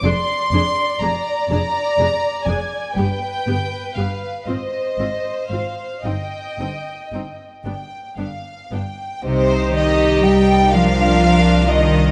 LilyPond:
<<
  \new Staff \with { instrumentName = "Violin section" } { \time 6/8 \key c \minor \tempo 4. = 40 c'''4 bes''8 bes''4 aes''8 | g''4 f''8 ees''4 f''8 | g''4. r4. | ees''4. bes'4. | }
  \new Staff \with { instrumentName = "Violin section" } { \time 6/8 \key c \minor d''2. | b'4. c''4. | ees''4. g''8 f''8 g''8 | c''8 ees''8 g''8 f''4 ees''8 | }
  \new Staff \with { instrumentName = "Viola section" } { \time 6/8 \key c \minor <d' aes'>8 <d' aes'>8 <d' aes'>8 <d' aes'>8 <d' aes'>8 <d' aes'>8 | <b g'>8 <b g'>8 <b g'>8 <c' f'>8 <c' f'>8 <c' f'>8 | <c' ees'>8 <c' ees'>8 <c' ees'>8 <b d'>8 <b d'>8 <b d'>8 | <ees' g'>4. <d' f'>4. | }
  \new Staff \with { instrumentName = "Cello section" } { \clef bass \time 6/8 \key c \minor f,8 f,8 f,8 f,8 f,8 f,8 | g,8 g,8 g,8 aes,8 aes,8 aes,8 | g,8 g,8 g,8 g,8 g,8 g,8 | c8 ees8 g8 f4 ees8 | }
  \new Staff \with { instrumentName = "Double bass section" } { \clef bass \time 6/8 \key c \minor f,,8 f,,8 f,,8 f,,8 f,,8 f,,8 | g,,8 g,,8 g,,8 aes,,8 aes,,8 aes,,8 | g,,8 g,,8 g,,8 g,,8 g,,8 g,,8 | c,2. | }
>>